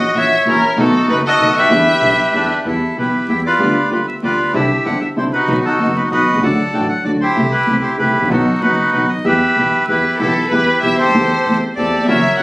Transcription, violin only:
0.00 0.14 D#5 medium
0.18 0.45 E5 medium
0.49 0.77 A#4 medium
0.80 1.08 A4 medium
1.10 1.17 B4 medium
1.26 1.54 D#5 medium
1.58 2.47 E5 medium
9.87 10.17 B4 medium
10.18 10.48 A4 medium
10.49 10.80 B4 medium
10.81 10.97 E5 medium
10.98 11.57 C5 medium
11.76 12.05 D5 medium
12.06 12.36 E5 medium
12.38 12.43 F#5 medium

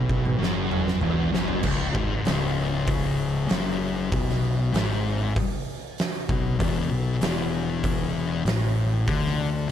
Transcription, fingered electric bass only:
0.00 0.36 B1 medium
0.40 0.98 F#1 medium
1.02 1.31 E1 medium
1.33 1.62 F#1 medium
1.64 1.93 C#1 loud
1.95 2.24 G#1 loud
2.26 3.46 C#1 loud
3.51 4.08 F#1 medium
4.12 4.70 B1 loud
4.74 5.32 G#1 loud
6.29 6.58 B1 loud
6.60 6.89 E1 loud
6.91 7.20 B1 loud
7.21 8.41 E1 loud
8.45 9.03 A1 medium
9.08 9.66 D2 loud

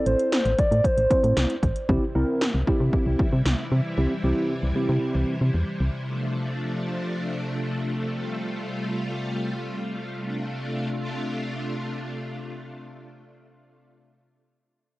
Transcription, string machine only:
1.89 10.20 C3 medium
1.89 6.02 E3 medium
1.89 6.02 G3 medium
1.89 6.02 E4 medium
6.06 8.13 F3 medium
6.06 10.20 A3 medium
6.06 8.13 D4 medium
8.15 10.22 G3 medium
8.15 10.22 F4 medium
10.24 13.87 C3 medium
10.24 13.87 A3 medium
10.24 13.87 D4 medium
10.24 13.87 F4 medium

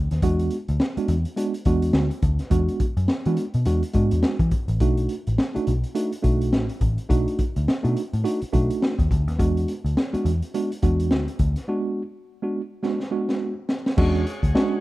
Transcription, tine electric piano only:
0.23 0.56 G#3 medium
0.23 0.56 B3 medium
0.23 0.56 D4 medium
0.23 0.56 F#4 loud
0.97 1.15 G#3 medium
0.97 1.15 B3 medium
0.97 1.15 D4 medium
0.97 1.15 F#4 medium
1.37 1.52 G#3 medium
1.37 1.53 B3 medium
1.37 1.53 D4 medium
1.37 1.53 F#4 medium
1.66 2.06 G#3 medium
1.66 2.07 B3 medium
1.66 2.07 D4 medium
1.66 2.07 F#4 loud
2.50 2.84 G#3 medium
2.50 2.84 B3 medium
2.50 2.84 D4 medium
2.50 2.84 F#4 loud
3.26 3.44 G#3 medium
3.26 3.44 B3 medium
3.26 3.44 D4 medium
3.26 3.44 F#4 medium
3.66 3.81 G#3 medium
3.66 3.82 B3 medium
3.66 3.82 D4 medium
3.66 3.82 F#4 loud
3.94 4.35 G#3 medium
3.94 4.35 B3 medium
3.94 4.35 D4 medium
3.94 4.35 F#4 medium
4.81 5.14 A3 medium
4.81 5.14 D4 medium
4.81 5.14 D#4 medium
4.81 5.14 F#4 medium
5.55 5.72 A3 medium
5.55 5.73 D4 medium
5.55 5.73 D#4 medium
5.55 5.73 F#4 medium
5.95 6.11 A3 medium
5.95 6.11 D4 medium
5.95 6.11 D#4 medium
5.95 6.11 F#4 medium
6.23 6.64 A3 medium
6.23 6.64 D4 medium
6.23 6.64 D#4 medium
6.23 6.64 F#4 medium
7.09 7.42 A3 medium
7.09 7.42 D4 medium
7.09 7.43 D#4 medium
7.09 7.43 F#4 loud
7.83 8.01 A3 medium
7.83 8.01 D4 medium
7.83 8.02 D#4 medium
7.83 8.02 F#4 medium
8.24 8.40 A3 medium
8.24 8.40 D4 medium
8.24 8.40 D#4 medium
8.24 8.40 F#4 loud
8.53 8.93 A3 medium
8.53 8.93 D4 medium
8.53 8.94 D#4 medium
8.53 8.94 F#4 loud
9.39 9.72 G#3 medium
9.39 9.72 B3 medium
9.39 9.72 D4 medium
9.39 9.72 F#4 loud
10.13 10.31 G#3 medium
10.13 10.31 B3 medium
10.13 10.31 D4 medium
10.13 10.31 F#4 medium
10.54 10.69 G#3 medium
10.54 10.69 B3 medium
10.54 10.70 D4 medium
10.54 10.70 F#4 medium
10.82 11.23 G#3 medium
10.82 11.23 B3 medium
10.82 11.23 D4 medium
10.82 11.23 F#4 medium
11.68 12.01 G#3 medium
11.68 12.01 B3 medium
11.68 12.01 D4 medium
11.68 12.02 F#4 loud
12.42 12.60 G#3 medium
12.42 12.60 B3 medium
12.42 12.61 D4 medium
12.42 12.61 F#4 medium
12.83 12.98 G#3 medium
12.83 12.99 B3 medium
12.83 12.99 D4 medium
12.83 12.99 F#4 medium
13.11 13.52 G#3 medium
13.11 13.52 B3 medium
13.11 13.52 D4 medium
13.11 13.53 F#4 loud
13.97 14.24 G#3 loud
13.97 14.24 C#4 medium
13.97 14.24 D4 medium
13.97 14.24 F#4 loud
14.55 14.80 G#3 loud
14.55 14.80 C#4 medium
14.55 14.80 D4 loud
14.55 14.80 F#4 loud

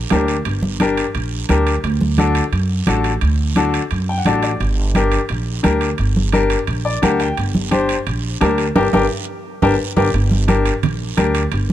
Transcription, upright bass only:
0.11 0.39 D2 medium
0.46 1.01 G1 medium
1.15 1.42 A#1 medium
1.49 1.77 D2 medium
1.84 2.39 D2 loud
2.52 2.80 F#2 medium
2.88 3.15 A1 medium
3.22 3.77 D2 medium
3.92 4.19 F#2 medium
4.26 4.54 A1 medium
4.60 5.16 G1 medium
5.30 5.58 A#1 medium
5.64 5.92 D2 medium
5.99 6.54 G1 medium
6.68 6.96 A#1 medium
7.03 7.30 D2 medium
7.38 7.93 G1 medium
8.07 8.34 A#1 medium
8.41 8.69 D2 medium
8.76 8.89 G1 medium
8.93 9.06 G1 medium
9.62 9.75 G1 loud
9.97 10.09 G1 medium
10.14 10.69 G1 medium
10.83 11.11 A#1 medium
11.18 11.45 D2 medium
11.52 11.73 G1 medium

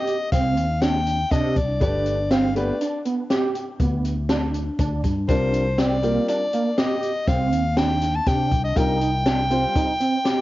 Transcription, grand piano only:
1.80 2.16 A3 medium
1.80 2.16 D4 medium
1.80 2.16 G4 medium
1.80 2.16 B4 medium
2.55 2.73 A3 medium
2.55 2.73 D4 medium
2.55 2.73 G4 medium
2.55 2.74 B4 medium
5.28 5.63 G3 medium
5.28 5.63 C4 medium
5.28 5.64 F4 soft
5.28 5.64 A#4 medium
6.03 6.38 G3 medium
6.03 6.38 C4 medium
6.03 6.38 F4 medium
6.03 6.39 A#4 medium
8.76 8.93 G3 medium
8.76 8.94 C4 medium
8.76 8.94 F4 medium
8.76 8.94 A#4 medium
9.50 9.85 G3 medium
9.50 9.85 C4 medium
9.50 9.86 F4 medium
9.50 9.86 C5 medium

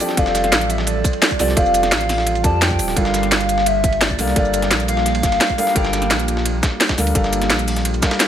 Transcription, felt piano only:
0.00 0.16 F3 loud
0.00 0.16 C4 medium
0.00 0.17 G4 medium
0.00 0.18 A4 medium
0.00 0.18 D5 loud
0.16 1.37 F3 loud
0.16 1.37 C4 medium
0.16 1.37 G4 medium
0.16 1.38 A4 medium
0.16 1.38 D5 loud
1.39 1.54 F3 medium
1.39 1.55 C4 medium
1.39 1.55 G4 medium
1.39 1.55 A4 medium
1.39 1.55 D5 loud
1.55 2.41 F3 loud
1.55 2.42 C4 medium
1.55 2.42 G4 medium
1.55 2.43 A4 medium
1.55 2.43 D5 loud
2.43 2.94 F3 medium
2.43 2.94 C4 medium
2.43 2.95 G4 medium
2.43 2.95 A4 medium
2.43 2.95 D5 loud
2.95 4.16 G3 loud
2.95 4.16 D4 medium
2.95 4.17 F4 loud
2.95 4.17 A4 medium
2.95 4.17 A#4 medium
4.18 4.33 G3 medium
4.18 4.34 D4 medium
4.18 4.34 A4 medium
4.18 4.34 A#4 medium
4.18 4.35 F5 loud
4.35 5.56 G3 loud
4.35 5.56 D4 medium
4.35 5.56 A4 medium
4.35 5.57 A#4 medium
4.35 5.57 F5 loud
5.57 5.73 G3 medium
5.57 5.73 D4 medium
5.57 5.74 A4 medium
5.57 5.74 A#4 medium
5.57 5.74 F5 loud
5.74 6.95 G3 loud
5.74 6.95 D4 medium
5.74 6.96 A4 medium
5.74 6.96 A#4 medium
5.74 6.96 F5 loud
6.97 7.13 G3 medium
6.97 7.13 D4 medium
6.97 7.13 A4 medium
6.97 7.13 A#4 medium
6.97 7.13 F5 loud
7.14 8.00 G3 loud
7.14 8.00 D4 medium
7.14 8.01 A4 medium
7.14 8.01 A#4 medium
7.14 8.01 F5 loud
8.01 8.28 G3 medium
8.01 8.28 D4 medium
8.01 8.28 A4 medium
8.01 8.28 A#4 medium
8.01 8.28 F5 loud

